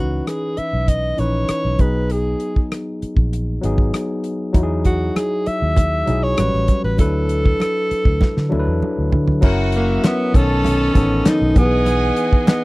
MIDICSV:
0, 0, Header, 1, 8, 480
1, 0, Start_track
1, 0, Tempo, 609756
1, 1655, Time_signature, 4, 2, 24, 8
1, 9951, End_track
2, 0, Start_track
2, 0, Title_t, "Violin section"
2, 0, Program_c, 0, 48
2, 7424, Note_on_c, 0, 78, 93
2, 7426, Note_on_c, 0, 66, 86
2, 7893, Note_off_c, 0, 78, 0
2, 7895, Note_off_c, 0, 66, 0
2, 8145, Note_on_c, 0, 81, 99
2, 8149, Note_on_c, 0, 69, 92
2, 8847, Note_off_c, 0, 81, 0
2, 8849, Note_off_c, 0, 69, 0
2, 9098, Note_on_c, 0, 80, 99
2, 9099, Note_on_c, 0, 68, 92
2, 9951, Note_off_c, 0, 68, 0
2, 9951, Note_off_c, 0, 80, 0
2, 9951, End_track
3, 0, Start_track
3, 0, Title_t, "French horn section"
3, 0, Program_c, 1, 60
3, 7425, Note_on_c, 1, 66, 66
3, 7426, Note_on_c, 1, 61, 79
3, 7428, Note_on_c, 1, 70, 67
3, 7428, Note_on_c, 1, 76, 82
3, 8136, Note_off_c, 1, 66, 0
3, 8137, Note_off_c, 1, 70, 0
3, 8137, Note_off_c, 1, 76, 0
3, 8140, Note_on_c, 1, 69, 67
3, 8141, Note_on_c, 1, 71, 72
3, 8142, Note_on_c, 1, 75, 83
3, 9084, Note_off_c, 1, 61, 0
3, 9086, Note_off_c, 1, 75, 0
3, 9089, Note_off_c, 1, 69, 0
3, 9089, Note_off_c, 1, 71, 0
3, 9095, Note_on_c, 1, 75, 83
3, 9096, Note_on_c, 1, 52, 74
3, 9097, Note_on_c, 1, 47, 71
3, 9097, Note_on_c, 1, 68, 73
3, 9951, Note_off_c, 1, 47, 0
3, 9951, Note_off_c, 1, 52, 0
3, 9951, Note_off_c, 1, 68, 0
3, 9951, Note_off_c, 1, 75, 0
3, 9951, End_track
4, 0, Start_track
4, 0, Title_t, "Alto saxophone"
4, 0, Program_c, 2, 65
4, 0, Note_on_c, 2, 66, 67
4, 215, Note_on_c, 2, 68, 74
4, 227, Note_off_c, 2, 66, 0
4, 458, Note_on_c, 2, 76, 84
4, 469, Note_off_c, 2, 68, 0
4, 697, Note_on_c, 2, 75, 91
4, 708, Note_off_c, 2, 76, 0
4, 938, Note_on_c, 2, 73, 83
4, 950, Note_off_c, 2, 75, 0
4, 1422, Note_on_c, 2, 71, 75
4, 1433, Note_off_c, 2, 73, 0
4, 1667, Note_on_c, 2, 68, 72
4, 1678, Note_off_c, 2, 71, 0
4, 2142, Note_off_c, 2, 68, 0
4, 3826, Note_on_c, 2, 66, 78
4, 4068, Note_on_c, 2, 68, 85
4, 4080, Note_off_c, 2, 66, 0
4, 4309, Note_on_c, 2, 76, 105
4, 4321, Note_off_c, 2, 68, 0
4, 4908, Note_on_c, 2, 73, 91
4, 4920, Note_off_c, 2, 76, 0
4, 5382, Note_off_c, 2, 73, 0
4, 5387, Note_on_c, 2, 71, 81
4, 5497, Note_off_c, 2, 71, 0
4, 5511, Note_on_c, 2, 69, 92
4, 6916, Note_off_c, 2, 69, 0
4, 7685, Note_on_c, 2, 58, 88
4, 7920, Note_on_c, 2, 59, 95
4, 7932, Note_off_c, 2, 58, 0
4, 8161, Note_on_c, 2, 61, 107
4, 8173, Note_off_c, 2, 59, 0
4, 8880, Note_on_c, 2, 63, 112
4, 8891, Note_off_c, 2, 61, 0
4, 9115, Note_on_c, 2, 59, 105
4, 9127, Note_off_c, 2, 63, 0
4, 9825, Note_off_c, 2, 59, 0
4, 9828, Note_on_c, 2, 59, 97
4, 9951, Note_off_c, 2, 59, 0
4, 9951, End_track
5, 0, Start_track
5, 0, Title_t, "Tine electric piano"
5, 0, Program_c, 3, 4
5, 0, Control_c, 3, 64, 127
5, 0, Note_on_c, 3, 52, 68
5, 0, Note_on_c, 3, 61, 65
5, 0, Note_on_c, 3, 63, 65
5, 0, Note_on_c, 3, 71, 78
5, 579, Note_off_c, 3, 52, 0
5, 584, Note_off_c, 3, 61, 0
5, 589, Note_off_c, 3, 63, 0
5, 618, Note_off_c, 3, 71, 0
5, 918, Note_on_c, 3, 52, 60
5, 929, Note_on_c, 3, 61, 53
5, 937, Note_on_c, 3, 63, 55
5, 948, Note_on_c, 3, 71, 66
5, 1399, Note_on_c, 3, 54, 60
5, 1407, Note_off_c, 3, 52, 0
5, 1407, Note_off_c, 3, 63, 0
5, 1407, Note_on_c, 3, 59, 61
5, 1412, Note_off_c, 3, 61, 0
5, 1417, Note_on_c, 3, 63, 57
5, 1421, Note_off_c, 3, 71, 0
5, 1425, Control_c, 3, 64, 0
5, 1426, Note_on_c, 3, 68, 66
5, 1546, Control_c, 3, 64, 127
5, 2262, Note_off_c, 3, 54, 0
5, 2266, Note_off_c, 3, 59, 0
5, 2270, Note_off_c, 3, 63, 0
5, 2275, Note_off_c, 3, 68, 0
5, 2845, Note_on_c, 3, 54, 75
5, 2855, Note_on_c, 3, 59, 67
5, 2866, Note_on_c, 3, 63, 64
5, 2876, Note_on_c, 3, 68, 80
5, 3493, Note_off_c, 3, 54, 0
5, 3498, Note_off_c, 3, 59, 0
5, 3503, Note_off_c, 3, 63, 0
5, 3508, Note_off_c, 3, 68, 0
5, 3565, Note_on_c, 3, 54, 77
5, 3575, Note_on_c, 3, 63, 72
5, 3582, Note_on_c, 3, 64, 76
5, 3591, Control_c, 3, 64, 0
5, 3594, Note_on_c, 3, 66, 69
5, 3639, Note_off_c, 3, 66, 0
5, 3646, Note_on_c, 3, 68, 87
5, 3721, Control_c, 3, 64, 127
5, 4427, Note_off_c, 3, 54, 0
5, 4432, Note_off_c, 3, 63, 0
5, 4435, Note_off_c, 3, 64, 0
5, 4467, Note_off_c, 3, 68, 0
5, 4770, Note_on_c, 3, 54, 67
5, 4779, Note_on_c, 3, 63, 59
5, 4788, Note_on_c, 3, 64, 58
5, 4800, Note_on_c, 3, 68, 70
5, 5006, Note_on_c, 3, 55, 69
5, 5014, Note_on_c, 3, 61, 61
5, 5017, Note_off_c, 3, 54, 0
5, 5021, Note_off_c, 3, 63, 0
5, 5025, Note_on_c, 3, 66, 58
5, 5026, Note_off_c, 3, 64, 0
5, 5031, Note_off_c, 3, 68, 0
5, 5033, Control_c, 3, 64, 0
5, 5034, Note_on_c, 3, 71, 74
5, 5162, Control_c, 3, 64, 127
5, 5442, Note_off_c, 3, 55, 0
5, 5445, Note_off_c, 3, 61, 0
5, 5451, Note_off_c, 3, 66, 0
5, 5455, Note_off_c, 3, 71, 0
5, 5491, Note_on_c, 3, 54, 71
5, 5503, Note_on_c, 3, 62, 64
5, 5511, Note_on_c, 3, 64, 63
5, 5512, Control_c, 3, 64, 0
5, 5520, Note_on_c, 3, 71, 75
5, 5644, Control_c, 3, 64, 127
5, 6350, Note_off_c, 3, 54, 0
5, 6356, Note_off_c, 3, 62, 0
5, 6360, Note_off_c, 3, 64, 0
5, 6365, Note_off_c, 3, 71, 0
5, 6686, Note_on_c, 3, 54, 81
5, 6696, Note_on_c, 3, 62, 72
5, 6705, Note_on_c, 3, 64, 77
5, 6713, Note_on_c, 3, 69, 71
5, 6760, Note_off_c, 3, 69, 0
5, 6764, Note_on_c, 3, 71, 87
5, 7334, Note_off_c, 3, 54, 0
5, 7339, Note_off_c, 3, 62, 0
5, 7343, Note_off_c, 3, 64, 0
5, 7373, Note_off_c, 3, 71, 0
5, 7408, Note_on_c, 3, 54, 84
5, 7417, Note_on_c, 3, 61, 81
5, 7427, Note_on_c, 3, 64, 79
5, 7433, Note_on_c, 3, 70, 91
5, 7435, Control_c, 3, 64, 0
5, 7580, Control_c, 3, 64, 127
5, 8127, Note_on_c, 3, 51, 75
5, 8135, Note_off_c, 3, 54, 0
5, 8136, Note_on_c, 3, 59, 68
5, 8139, Note_off_c, 3, 61, 0
5, 8144, Note_off_c, 3, 64, 0
5, 8147, Note_off_c, 3, 70, 0
5, 8147, Note_on_c, 3, 61, 70
5, 8151, Control_c, 3, 64, 0
5, 8155, Note_on_c, 3, 69, 82
5, 8279, Control_c, 3, 64, 127
5, 8560, Note_off_c, 3, 51, 0
5, 8564, Note_off_c, 3, 59, 0
5, 8570, Note_off_c, 3, 61, 0
5, 8574, Note_off_c, 3, 69, 0
5, 8609, Note_on_c, 3, 51, 74
5, 8618, Note_on_c, 3, 59, 63
5, 8628, Note_on_c, 3, 61, 67
5, 8638, Note_on_c, 3, 69, 80
5, 9085, Note_on_c, 3, 52, 75
5, 9087, Note_off_c, 3, 59, 0
5, 9093, Note_off_c, 3, 51, 0
5, 9096, Note_on_c, 3, 59, 65
5, 9103, Note_off_c, 3, 61, 0
5, 9105, Note_on_c, 3, 63, 65
5, 9108, Note_off_c, 3, 69, 0
5, 9108, Control_c, 3, 64, 0
5, 9113, Note_on_c, 3, 67, 66
5, 9157, Note_off_c, 3, 67, 0
5, 9167, Note_on_c, 3, 68, 83
5, 9244, Control_c, 3, 64, 127
5, 9942, Note_off_c, 3, 52, 0
5, 9948, Note_off_c, 3, 59, 0
5, 9951, Note_off_c, 3, 63, 0
5, 9951, Note_off_c, 3, 68, 0
5, 9951, End_track
6, 0, Start_track
6, 0, Title_t, "Fingered electric bass"
6, 0, Program_c, 4, 33
6, 0, Note_on_c, 4, 37, 86
6, 158, Note_off_c, 4, 37, 0
6, 577, Note_on_c, 4, 35, 69
6, 894, Note_off_c, 4, 35, 0
6, 935, Note_on_c, 4, 34, 75
6, 1147, Note_off_c, 4, 34, 0
6, 1298, Note_on_c, 4, 35, 69
6, 1402, Note_off_c, 4, 35, 0
6, 1416, Note_on_c, 4, 35, 79
6, 1841, Note_off_c, 4, 35, 0
6, 2494, Note_on_c, 4, 34, 72
6, 2815, Note_off_c, 4, 34, 0
6, 2865, Note_on_c, 4, 32, 76
6, 3075, Note_off_c, 4, 32, 0
6, 3582, Note_on_c, 4, 40, 104
6, 4007, Note_off_c, 4, 40, 0
6, 4425, Note_on_c, 4, 39, 81
6, 4743, Note_off_c, 4, 39, 0
6, 4787, Note_on_c, 4, 35, 75
6, 4998, Note_off_c, 4, 35, 0
6, 5028, Note_on_c, 4, 33, 84
6, 5132, Note_off_c, 4, 33, 0
6, 5148, Note_on_c, 4, 33, 81
6, 5252, Note_off_c, 4, 33, 0
6, 5385, Note_on_c, 4, 33, 81
6, 5491, Note_off_c, 4, 33, 0
6, 5504, Note_on_c, 4, 38, 100
6, 5929, Note_off_c, 4, 38, 0
6, 6342, Note_on_c, 4, 38, 80
6, 6449, Note_off_c, 4, 38, 0
6, 6593, Note_on_c, 4, 50, 91
6, 6695, Note_off_c, 4, 50, 0
6, 6710, Note_on_c, 4, 38, 89
6, 6814, Note_off_c, 4, 38, 0
6, 6830, Note_on_c, 4, 40, 85
6, 6934, Note_off_c, 4, 40, 0
6, 7073, Note_on_c, 4, 38, 79
6, 7175, Note_off_c, 4, 38, 0
6, 7195, Note_on_c, 4, 50, 84
6, 7402, Note_off_c, 4, 50, 0
6, 7426, Note_on_c, 4, 30, 102
6, 7849, Note_off_c, 4, 30, 0
6, 8146, Note_on_c, 4, 35, 95
6, 8568, Note_off_c, 4, 35, 0
6, 8627, Note_on_c, 4, 33, 88
6, 8836, Note_off_c, 4, 33, 0
6, 8985, Note_on_c, 4, 35, 84
6, 9089, Note_off_c, 4, 35, 0
6, 9103, Note_on_c, 4, 35, 94
6, 9525, Note_off_c, 4, 35, 0
6, 9951, End_track
7, 0, Start_track
7, 0, Title_t, "Muted fingered electric bass strokes"
7, 458, Note_on_c, 9, 29, 39
7, 537, Note_off_c, 9, 29, 0
7, 1176, Note_on_c, 9, 29, 37
7, 1255, Note_off_c, 9, 29, 0
7, 2382, Note_on_c, 9, 29, 40
7, 2461, Note_off_c, 9, 29, 0
7, 4308, Note_on_c, 9, 29, 40
7, 4387, Note_off_c, 9, 29, 0
7, 6230, Note_on_c, 9, 29, 43
7, 6308, Note_off_c, 9, 29, 0
7, 6950, Note_on_c, 9, 29, 45
7, 7029, Note_off_c, 9, 29, 0
7, 8869, Note_on_c, 9, 29, 48
7, 8948, Note_off_c, 9, 29, 0
7, 9951, End_track
8, 0, Start_track
8, 0, Title_t, "Drums"
8, 214, Note_on_c, 9, 42, 63
8, 216, Note_on_c, 9, 37, 85
8, 293, Note_off_c, 9, 42, 0
8, 294, Note_off_c, 9, 37, 0
8, 449, Note_on_c, 9, 42, 48
8, 528, Note_off_c, 9, 42, 0
8, 693, Note_on_c, 9, 36, 74
8, 694, Note_on_c, 9, 42, 79
8, 772, Note_off_c, 9, 36, 0
8, 773, Note_off_c, 9, 42, 0
8, 930, Note_on_c, 9, 42, 56
8, 1009, Note_off_c, 9, 42, 0
8, 1168, Note_on_c, 9, 42, 83
8, 1172, Note_on_c, 9, 37, 93
8, 1247, Note_off_c, 9, 42, 0
8, 1250, Note_off_c, 9, 37, 0
8, 1407, Note_on_c, 9, 42, 52
8, 1411, Note_on_c, 9, 36, 88
8, 1485, Note_off_c, 9, 42, 0
8, 1490, Note_off_c, 9, 36, 0
8, 1650, Note_on_c, 9, 42, 75
8, 1729, Note_off_c, 9, 42, 0
8, 1887, Note_on_c, 9, 42, 64
8, 1966, Note_off_c, 9, 42, 0
8, 2017, Note_on_c, 9, 36, 70
8, 2096, Note_off_c, 9, 36, 0
8, 2139, Note_on_c, 9, 42, 59
8, 2140, Note_on_c, 9, 37, 89
8, 2217, Note_off_c, 9, 42, 0
8, 2219, Note_off_c, 9, 37, 0
8, 2379, Note_on_c, 9, 42, 49
8, 2458, Note_off_c, 9, 42, 0
8, 2491, Note_on_c, 9, 36, 76
8, 2570, Note_off_c, 9, 36, 0
8, 2622, Note_on_c, 9, 42, 83
8, 2701, Note_off_c, 9, 42, 0
8, 2861, Note_on_c, 9, 42, 60
8, 2939, Note_off_c, 9, 42, 0
8, 2976, Note_on_c, 9, 36, 78
8, 3054, Note_off_c, 9, 36, 0
8, 3099, Note_on_c, 9, 42, 84
8, 3102, Note_on_c, 9, 37, 100
8, 3178, Note_off_c, 9, 42, 0
8, 3181, Note_off_c, 9, 37, 0
8, 3336, Note_on_c, 9, 42, 57
8, 3415, Note_off_c, 9, 42, 0
8, 3577, Note_on_c, 9, 36, 87
8, 3578, Note_on_c, 9, 42, 80
8, 3578, Note_on_c, 9, 62, 48
8, 3656, Note_off_c, 9, 36, 0
8, 3656, Note_off_c, 9, 62, 0
8, 3657, Note_off_c, 9, 42, 0
8, 3815, Note_on_c, 9, 42, 65
8, 3821, Note_on_c, 9, 36, 75
8, 3893, Note_off_c, 9, 42, 0
8, 3900, Note_off_c, 9, 36, 0
8, 4062, Note_on_c, 9, 63, 54
8, 4064, Note_on_c, 9, 42, 65
8, 4065, Note_on_c, 9, 37, 89
8, 4141, Note_off_c, 9, 63, 0
8, 4143, Note_off_c, 9, 42, 0
8, 4144, Note_off_c, 9, 37, 0
8, 4300, Note_on_c, 9, 42, 52
8, 4305, Note_on_c, 9, 62, 28
8, 4379, Note_off_c, 9, 42, 0
8, 4384, Note_off_c, 9, 62, 0
8, 4538, Note_on_c, 9, 62, 47
8, 4538, Note_on_c, 9, 64, 67
8, 4544, Note_on_c, 9, 36, 80
8, 4546, Note_on_c, 9, 42, 85
8, 4617, Note_off_c, 9, 62, 0
8, 4617, Note_off_c, 9, 64, 0
8, 4623, Note_off_c, 9, 36, 0
8, 4624, Note_off_c, 9, 42, 0
8, 4781, Note_on_c, 9, 42, 58
8, 4782, Note_on_c, 9, 62, 42
8, 4782, Note_on_c, 9, 64, 62
8, 4860, Note_off_c, 9, 42, 0
8, 4860, Note_off_c, 9, 62, 0
8, 4860, Note_off_c, 9, 64, 0
8, 5018, Note_on_c, 9, 42, 84
8, 5021, Note_on_c, 9, 37, 103
8, 5024, Note_on_c, 9, 63, 65
8, 5097, Note_off_c, 9, 42, 0
8, 5100, Note_off_c, 9, 37, 0
8, 5102, Note_off_c, 9, 63, 0
8, 5149, Note_on_c, 9, 37, 29
8, 5227, Note_off_c, 9, 37, 0
8, 5258, Note_on_c, 9, 42, 60
8, 5260, Note_on_c, 9, 63, 64
8, 5262, Note_on_c, 9, 36, 77
8, 5337, Note_off_c, 9, 42, 0
8, 5339, Note_off_c, 9, 63, 0
8, 5341, Note_off_c, 9, 36, 0
8, 5497, Note_on_c, 9, 62, 51
8, 5501, Note_on_c, 9, 36, 90
8, 5502, Note_on_c, 9, 42, 83
8, 5576, Note_off_c, 9, 62, 0
8, 5580, Note_off_c, 9, 36, 0
8, 5580, Note_off_c, 9, 42, 0
8, 5740, Note_on_c, 9, 42, 67
8, 5818, Note_off_c, 9, 42, 0
8, 5869, Note_on_c, 9, 36, 79
8, 5947, Note_off_c, 9, 36, 0
8, 5983, Note_on_c, 9, 63, 54
8, 5994, Note_on_c, 9, 42, 66
8, 5995, Note_on_c, 9, 37, 91
8, 6062, Note_off_c, 9, 63, 0
8, 6072, Note_off_c, 9, 42, 0
8, 6074, Note_off_c, 9, 37, 0
8, 6227, Note_on_c, 9, 42, 57
8, 6306, Note_off_c, 9, 42, 0
8, 6339, Note_on_c, 9, 36, 81
8, 6418, Note_off_c, 9, 36, 0
8, 6460, Note_on_c, 9, 62, 50
8, 6460, Note_on_c, 9, 64, 65
8, 6468, Note_on_c, 9, 36, 80
8, 6469, Note_on_c, 9, 38, 47
8, 6539, Note_off_c, 9, 62, 0
8, 6539, Note_off_c, 9, 64, 0
8, 6546, Note_off_c, 9, 36, 0
8, 6548, Note_off_c, 9, 38, 0
8, 6588, Note_on_c, 9, 38, 45
8, 6667, Note_off_c, 9, 38, 0
8, 6706, Note_on_c, 9, 48, 59
8, 6706, Note_on_c, 9, 62, 45
8, 6784, Note_off_c, 9, 62, 0
8, 6785, Note_off_c, 9, 48, 0
8, 6947, Note_on_c, 9, 63, 68
8, 7026, Note_off_c, 9, 63, 0
8, 7181, Note_on_c, 9, 63, 62
8, 7183, Note_on_c, 9, 43, 87
8, 7260, Note_off_c, 9, 63, 0
8, 7261, Note_off_c, 9, 43, 0
8, 7302, Note_on_c, 9, 43, 78
8, 7380, Note_off_c, 9, 43, 0
8, 7416, Note_on_c, 9, 62, 54
8, 7421, Note_on_c, 9, 36, 100
8, 7421, Note_on_c, 9, 49, 89
8, 7495, Note_off_c, 9, 62, 0
8, 7500, Note_off_c, 9, 36, 0
8, 7500, Note_off_c, 9, 49, 0
8, 7653, Note_on_c, 9, 42, 77
8, 7732, Note_off_c, 9, 42, 0
8, 7905, Note_on_c, 9, 42, 73
8, 7905, Note_on_c, 9, 63, 65
8, 7906, Note_on_c, 9, 38, 104
8, 7906, Note_on_c, 9, 39, 86
8, 7984, Note_off_c, 9, 42, 0
8, 7984, Note_off_c, 9, 63, 0
8, 7985, Note_off_c, 9, 38, 0
8, 7985, Note_off_c, 9, 39, 0
8, 8142, Note_on_c, 9, 36, 102
8, 8146, Note_on_c, 9, 42, 60
8, 8221, Note_off_c, 9, 36, 0
8, 8225, Note_off_c, 9, 42, 0
8, 8380, Note_on_c, 9, 62, 50
8, 8380, Note_on_c, 9, 64, 73
8, 8389, Note_on_c, 9, 42, 96
8, 8458, Note_off_c, 9, 62, 0
8, 8458, Note_off_c, 9, 64, 0
8, 8468, Note_off_c, 9, 42, 0
8, 8622, Note_on_c, 9, 36, 85
8, 8623, Note_on_c, 9, 42, 68
8, 8623, Note_on_c, 9, 62, 50
8, 8623, Note_on_c, 9, 64, 65
8, 8701, Note_off_c, 9, 36, 0
8, 8701, Note_off_c, 9, 42, 0
8, 8702, Note_off_c, 9, 62, 0
8, 8702, Note_off_c, 9, 64, 0
8, 8859, Note_on_c, 9, 42, 103
8, 8860, Note_on_c, 9, 63, 73
8, 8862, Note_on_c, 9, 38, 111
8, 8866, Note_on_c, 9, 39, 86
8, 8937, Note_off_c, 9, 42, 0
8, 8939, Note_off_c, 9, 63, 0
8, 8941, Note_off_c, 9, 38, 0
8, 8945, Note_off_c, 9, 39, 0
8, 9098, Note_on_c, 9, 42, 67
8, 9100, Note_on_c, 9, 36, 104
8, 9103, Note_on_c, 9, 63, 72
8, 9176, Note_off_c, 9, 42, 0
8, 9178, Note_off_c, 9, 36, 0
8, 9182, Note_off_c, 9, 63, 0
8, 9337, Note_on_c, 9, 62, 56
8, 9339, Note_on_c, 9, 42, 85
8, 9416, Note_off_c, 9, 62, 0
8, 9418, Note_off_c, 9, 42, 0
8, 9575, Note_on_c, 9, 42, 74
8, 9654, Note_off_c, 9, 42, 0
8, 9703, Note_on_c, 9, 36, 89
8, 9782, Note_off_c, 9, 36, 0
8, 9818, Note_on_c, 9, 63, 65
8, 9823, Note_on_c, 9, 42, 76
8, 9824, Note_on_c, 9, 39, 84
8, 9825, Note_on_c, 9, 38, 111
8, 9897, Note_off_c, 9, 63, 0
8, 9902, Note_off_c, 9, 42, 0
8, 9903, Note_off_c, 9, 38, 0
8, 9903, Note_off_c, 9, 39, 0
8, 9951, End_track
0, 0, End_of_file